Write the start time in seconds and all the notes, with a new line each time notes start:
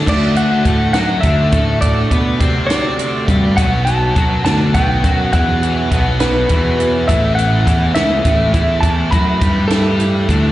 0.07 D2 D3 A3 D4 F#4 D5, kick, crash
0.36 D3 A3 D4 F#4 F#5, closed hi-hat
0.65 A2 D3 A3 D4 F#4 A4, kick, closed hi-hat
0.93 F#2 D3 F#3 A3 D4 F#4 F#5, snare, closed hi-hat
1.21 D2 D3 A3 D4 F#4 E5, kick, closed hi-hat
1.52 A2 D3 A3 D4 F#4 A4, kick, closed hi-hat
1.80 D3 A3 D4 F#4 D5, kick, closed hi-hat
2.11 B2 D3 A3 B3 D4 F#4 B4, kick, closed hi-hat
2.39 C3 D3 A3 C4 D4 F#4 C5, kick, closed hi-hat
2.67 F#4 D5, closed hi-hat
2.71 D3 A3 D4, snare
2.98 D3 A3 D4 F#4, closed hi-hat
3.28 G2 D3 G3 A3 D4 F#4 G4, kick, closed hi-hat
3.57 B1 B2 F#3 B3 F#4 F#5, kick, closed hi-hat
3.85 B2 F#3 B3 F#4 A5, closed hi-hat
4.16 F#2 B2 F#3 B3 F#4, kick, closed hi-hat
4.45 D2 B2 D3 F#3 B3 D4 F#4 A5, snare, closed hi-hat
4.74 B1 B2 F#3 B3 F#4 G5, kick, closed hi-hat
5.04 F#2 B2 F#3 B3 F#4, kick, closed hi-hat
5.17 F#5
5.33 E2 B2 E3 F#3 B3 E4 F#4 F#5, kick, closed hi-hat
5.62 B2 F#3 B3 F#4, closed hi-hat
5.92 B1 B2 F#3 B3 F#4, kick, closed hi-hat
6.20 B2 F#3 B3 F#4 B4, snare, closed hi-hat
6.49 E2 B2 E3 F#3 B3 E4 F#4, kick, closed hi-hat
6.79 B2 F#3 B3 F#4, closed hi-hat
7.08 A1 A2 E3 A3 E4 E5, kick, closed hi-hat
7.35 A2 E3 A3 E4 F#5, closed hi-hat
7.67 E2 A2 E3 A3 E4, kick, closed hi-hat
7.95 C#2 A2 C#3 E3 A3 C#4 E4 E5, snare, closed hi-hat
8.23 A1 A2 E3 A3 E4, kick, closed hi-hat
8.52 E2 A2 E3 A3 E4, kick, closed hi-hat
8.81 A2 E3 A3 E4 A5, kick, closed hi-hat
9.11 F#2 A2 E3 F#3 A3 E4 F#4 B5, kick, closed hi-hat
9.41 G2 A2 E3 G3 A3 E4 G4, kick, closed hi-hat
9.68 A2 E3 A3 E4 A4, snare, closed hi-hat
10.00 A2 E3 A3 E4, closed hi-hat
10.29 D2 A2 D3 E3 A3 D4 E4, kick, closed hi-hat